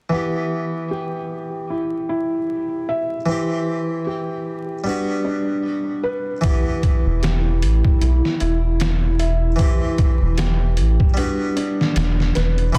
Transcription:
0.10 E3 B3 E4
0.15 G4
0.91 G4
1.70 E4
2.09 E4
2.89 E5
3.26 E3 C4 E4
3.31 G4
4.07 G4
4.84 G3 B3 D4
4.89 F#4
5.25 D4
6.03 B4
6.41 E3 B3 E4, kick, closed hi-hat
6.46 G4
6.83 kick, closed hi-hat
7.06 E1
7.23 G4, snare, closed hi-hat
7.62 A1, closed hi-hat
7.85 kick
8.01 B1 E4, closed hi-hat
8.25 snare
8.40 E1 E4, closed hi-hat
8.80 snare, closed hi-hat
9.19 E5, closed hi-hat
9.56 E3 C4 E4, kick, closed hi-hat
9.62 G4
9.98 kick, closed hi-hat
10.22 E1
10.38 G4, snare, closed hi-hat
10.77 A1, closed hi-hat
11.00 kick
11.14 G3 B3 D4, closed hi-hat
11.19 F#4
11.56 D4, closed hi-hat
11.81 snare
11.96 E1, snare, closed hi-hat
12.20 snare
12.35 E1 B4, snare, closed hi-hat
12.58 closed hi-hat
12.73 E3 B3, kick, closed hi-hat

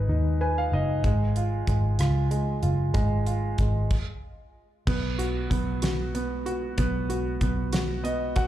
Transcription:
Already playing: G#3 D#4 B4
0.08 D#2 D#4
0.41 B4 G#5
0.58 F5
0.72 F#1 D#4 D#5
1.04 G#1 G#3, kick, closed hi-hat
1.36 F4, closed hi-hat
1.67 G#1 G#3, kick, closed hi-hat
1.99 C#2 F4, cross-stick, closed hi-hat
2.31 G#3, closed hi-hat
2.63 F#1 F4, closed hi-hat
2.94 G#1 G#3, kick, closed hi-hat
3.26 F4, closed hi-hat
3.58 G#1 G#3, kick, closed hi-hat
3.90 kick, crash
4.87 B1 B3, kick, crash
5.19 F#4, closed hi-hat
5.50 B1 B3, kick, closed hi-hat
5.82 F#4, snare, closed hi-hat
6.15 B3, closed hi-hat
6.46 F#4, closed hi-hat
6.78 B1 B3, kick, closed hi-hat
7.09 F#4, closed hi-hat
7.41 B1 B3, kick, closed hi-hat
7.73 F#4, snare, closed hi-hat
8.03 B3 D#5, closed hi-hat
8.36 F#4 F#5, kick, closed hi-hat

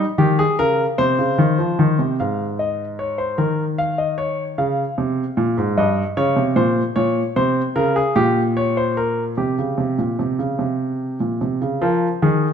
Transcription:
0.18 D#3 G4
0.39 G#4
0.59 C#3 A#4
0.98 C3 C5
1.19 C#3
1.38 D#3
1.58 F3
1.79 D#3
1.99 C3
2.20 G#2 F5
2.59 D#5
2.99 C#5
3.18 C5
3.38 D#3 A#4
3.78 F5
3.98 D#5
4.18 C#5
4.58 C#3 F5
4.98 C3
5.37 A#2
5.58 G#2
5.78 G2 D#5
6.17 C#3 C#5
6.36 C3
6.56 A#2 C5
6.96 A#2 C#5
7.36 C3 C5
7.76 C#3 A#4
7.96 G#4
8.16 A#2 G4
8.57 C#5
8.77 C5
8.97 A#4
9.37 C3 G4
9.58 C#3
9.78 C3
9.98 A#2
10.19 C3
10.39 C#3
10.59 C3
11.20 A#2
11.41 C3
11.61 C#3
11.81 F3 A#4
12.22 D#3 G#4

